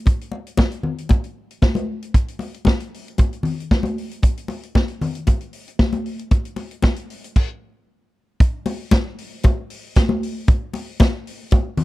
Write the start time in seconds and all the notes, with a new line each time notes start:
0.06 kick, closed hi-hat, muted conga
0.21 closed hi-hat
0.32 muted conga
0.47 closed hi-hat
0.57 kick, snare, high conga
0.71 closed hi-hat
0.83 low conga
0.98 closed hi-hat
1.09 kick, closed hi-hat, muted conga
1.24 closed hi-hat
1.51 closed hi-hat
1.62 kick, snare, high conga
1.75 closed hi-hat, high conga
2.02 closed hi-hat
2.14 kick, closed hi-hat
2.28 closed hi-hat
2.39 open hi-hat, muted conga
2.54 closed hi-hat
2.65 kick, snare, high conga
2.80 closed hi-hat
2.94 open hi-hat
3.08 closed hi-hat
3.18 kick, closed hi-hat, muted conga
3.33 closed hi-hat
3.43 open hi-hat, low conga
3.60 closed hi-hat
3.71 kick, snare, high conga
3.83 closed hi-hat, high conga
3.98 open hi-hat
4.11 closed hi-hat
4.23 kick, closed hi-hat, muted conga
4.37 closed hi-hat
4.48 open hi-hat, muted conga
4.63 closed hi-hat
4.75 kick, snare, high conga
4.88 closed hi-hat
5.01 open hi-hat, low conga
5.15 closed hi-hat
5.27 kick, closed hi-hat, muted conga
5.41 closed hi-hat
5.53 open hi-hat
5.68 closed hi-hat
5.79 kick, snare, high conga
5.93 closed hi-hat, high conga
6.06 open hi-hat
6.19 closed hi-hat
6.31 kick, closed hi-hat, muted conga
6.45 closed hi-hat
6.56 open hi-hat, muted conga
6.71 closed hi-hat
6.82 kick, snare, high conga
6.96 closed hi-hat
7.10 open hi-hat
7.24 closed hi-hat
7.36 kick, crash
8.40 kick, closed hi-hat
8.66 open hi-hat, muted conga
8.91 kick, snare, closed hi-hat, high conga
9.18 open hi-hat
9.43 kick, closed hi-hat, muted conga
9.70 open hi-hat
9.95 kick, snare, closed hi-hat, high conga
10.09 high conga
10.23 open hi-hat
10.48 kick, closed hi-hat, muted conga
10.74 open hi-hat, muted conga
11.00 kick, snare, closed hi-hat, high conga
11.27 open hi-hat
11.51 kick, closed hi-hat, muted conga
11.77 open hi-hat, low conga